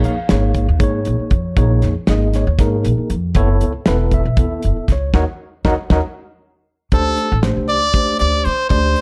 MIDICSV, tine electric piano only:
0, 0, Header, 1, 2, 480
1, 0, Start_track
1, 0, Key_signature, -5, "minor"
1, 0, Tempo, 509771
1, 1484, Time_signature, 7, 3, 24, 8
1, 8486, End_track
2, 0, Start_track
2, 0, Title_t, "Tine electric piano"
2, 0, Program_c, 0, 4
2, 0, Note_on_c, 0, 58, 92
2, 0, Note_on_c, 0, 63, 82
2, 0, Note_on_c, 0, 68, 79
2, 0, Note_on_c, 0, 73, 96
2, 49, Note_on_c, 0, 77, 92
2, 134, Note_off_c, 0, 58, 0
2, 135, Note_off_c, 0, 63, 0
2, 139, Note_off_c, 0, 68, 0
2, 140, Note_off_c, 0, 73, 0
2, 282, Note_on_c, 0, 58, 69
2, 285, Note_on_c, 0, 63, 61
2, 285, Note_on_c, 0, 73, 81
2, 286, Note_on_c, 0, 68, 60
2, 616, Note_off_c, 0, 58, 0
2, 618, Note_off_c, 0, 63, 0
2, 618, Note_off_c, 0, 68, 0
2, 618, Note_off_c, 0, 73, 0
2, 729, Note_off_c, 0, 77, 0
2, 743, Note_on_c, 0, 58, 62
2, 750, Note_on_c, 0, 63, 57
2, 752, Note_on_c, 0, 73, 67
2, 754, Note_on_c, 0, 68, 57
2, 776, Note_off_c, 0, 73, 0
2, 787, Note_on_c, 0, 73, 78
2, 1253, Note_off_c, 0, 58, 0
2, 1257, Note_off_c, 0, 63, 0
2, 1259, Note_off_c, 0, 68, 0
2, 1458, Note_off_c, 0, 73, 0
2, 1476, Note_on_c, 0, 58, 73
2, 1477, Note_on_c, 0, 63, 72
2, 1483, Note_on_c, 0, 68, 64
2, 1488, Note_on_c, 0, 73, 86
2, 1813, Note_off_c, 0, 58, 0
2, 1814, Note_off_c, 0, 63, 0
2, 1817, Note_off_c, 0, 68, 0
2, 1819, Note_off_c, 0, 73, 0
2, 1966, Note_on_c, 0, 58, 67
2, 1970, Note_on_c, 0, 63, 65
2, 1971, Note_on_c, 0, 68, 69
2, 1976, Note_on_c, 0, 75, 79
2, 2218, Note_on_c, 0, 73, 73
2, 2298, Note_off_c, 0, 58, 0
2, 2300, Note_off_c, 0, 63, 0
2, 2301, Note_off_c, 0, 68, 0
2, 2303, Note_off_c, 0, 75, 0
2, 2447, Note_on_c, 0, 58, 63
2, 2450, Note_on_c, 0, 70, 71
2, 2454, Note_on_c, 0, 63, 61
2, 2455, Note_on_c, 0, 68, 62
2, 2658, Note_off_c, 0, 73, 0
2, 2945, Note_off_c, 0, 58, 0
2, 2947, Note_off_c, 0, 70, 0
2, 2948, Note_off_c, 0, 63, 0
2, 2949, Note_off_c, 0, 68, 0
2, 3164, Note_on_c, 0, 59, 96
2, 3165, Note_on_c, 0, 69, 89
2, 3167, Note_on_c, 0, 73, 104
2, 3168, Note_on_c, 0, 64, 91
2, 3497, Note_off_c, 0, 59, 0
2, 3497, Note_off_c, 0, 69, 0
2, 3499, Note_off_c, 0, 64, 0
2, 3499, Note_off_c, 0, 73, 0
2, 3646, Note_on_c, 0, 59, 83
2, 3647, Note_on_c, 0, 64, 86
2, 3651, Note_on_c, 0, 69, 76
2, 3654, Note_on_c, 0, 71, 97
2, 3897, Note_on_c, 0, 76, 90
2, 3978, Note_off_c, 0, 59, 0
2, 3978, Note_off_c, 0, 64, 0
2, 3981, Note_off_c, 0, 69, 0
2, 3982, Note_off_c, 0, 71, 0
2, 4123, Note_off_c, 0, 76, 0
2, 4126, Note_on_c, 0, 59, 67
2, 4129, Note_on_c, 0, 64, 59
2, 4133, Note_on_c, 0, 69, 59
2, 4135, Note_on_c, 0, 76, 70
2, 4625, Note_off_c, 0, 59, 0
2, 4626, Note_off_c, 0, 64, 0
2, 4628, Note_off_c, 0, 69, 0
2, 4629, Note_off_c, 0, 76, 0
2, 4635, Note_on_c, 0, 73, 70
2, 4840, Note_off_c, 0, 73, 0
2, 4842, Note_on_c, 0, 66, 96
2, 4844, Note_on_c, 0, 63, 92
2, 4845, Note_on_c, 0, 70, 98
2, 4846, Note_on_c, 0, 78, 97
2, 4850, Note_on_c, 0, 75, 88
2, 4851, Note_on_c, 0, 73, 95
2, 4919, Note_off_c, 0, 66, 0
2, 4921, Note_off_c, 0, 63, 0
2, 4921, Note_off_c, 0, 70, 0
2, 4922, Note_off_c, 0, 78, 0
2, 4924, Note_off_c, 0, 75, 0
2, 4925, Note_off_c, 0, 73, 0
2, 5320, Note_on_c, 0, 63, 101
2, 5321, Note_on_c, 0, 66, 111
2, 5321, Note_on_c, 0, 70, 98
2, 5342, Note_on_c, 0, 73, 91
2, 5342, Note_on_c, 0, 75, 100
2, 5344, Note_on_c, 0, 78, 98
2, 5398, Note_off_c, 0, 63, 0
2, 5399, Note_off_c, 0, 66, 0
2, 5399, Note_off_c, 0, 70, 0
2, 5411, Note_off_c, 0, 73, 0
2, 5411, Note_off_c, 0, 75, 0
2, 5413, Note_off_c, 0, 78, 0
2, 5571, Note_on_c, 0, 63, 97
2, 5573, Note_on_c, 0, 66, 96
2, 5577, Note_on_c, 0, 70, 101
2, 5578, Note_on_c, 0, 78, 90
2, 5579, Note_on_c, 0, 73, 87
2, 5579, Note_on_c, 0, 75, 101
2, 5645, Note_off_c, 0, 63, 0
2, 5646, Note_off_c, 0, 66, 0
2, 5648, Note_off_c, 0, 70, 0
2, 5649, Note_off_c, 0, 78, 0
2, 5650, Note_off_c, 0, 73, 0
2, 5650, Note_off_c, 0, 75, 0
2, 6520, Note_on_c, 0, 57, 69
2, 6521, Note_on_c, 0, 62, 71
2, 6521, Note_on_c, 0, 67, 61
2, 6529, Note_on_c, 0, 72, 80
2, 6856, Note_off_c, 0, 57, 0
2, 6856, Note_off_c, 0, 62, 0
2, 6856, Note_off_c, 0, 67, 0
2, 6860, Note_off_c, 0, 72, 0
2, 6991, Note_on_c, 0, 57, 67
2, 6993, Note_on_c, 0, 72, 73
2, 6995, Note_on_c, 0, 67, 59
2, 6997, Note_on_c, 0, 62, 61
2, 7331, Note_off_c, 0, 57, 0
2, 7333, Note_off_c, 0, 67, 0
2, 7333, Note_off_c, 0, 72, 0
2, 7334, Note_off_c, 0, 62, 0
2, 7473, Note_on_c, 0, 57, 61
2, 7477, Note_on_c, 0, 67, 59
2, 7480, Note_on_c, 0, 62, 57
2, 7482, Note_on_c, 0, 72, 63
2, 7980, Note_off_c, 0, 57, 0
2, 7981, Note_off_c, 0, 67, 0
2, 7983, Note_off_c, 0, 62, 0
2, 7984, Note_off_c, 0, 72, 0
2, 8193, Note_on_c, 0, 62, 69
2, 8194, Note_on_c, 0, 57, 69
2, 8196, Note_on_c, 0, 67, 63
2, 8199, Note_on_c, 0, 74, 79
2, 8486, Note_off_c, 0, 57, 0
2, 8486, Note_off_c, 0, 62, 0
2, 8486, Note_off_c, 0, 67, 0
2, 8486, Note_off_c, 0, 74, 0
2, 8486, End_track
0, 0, End_of_file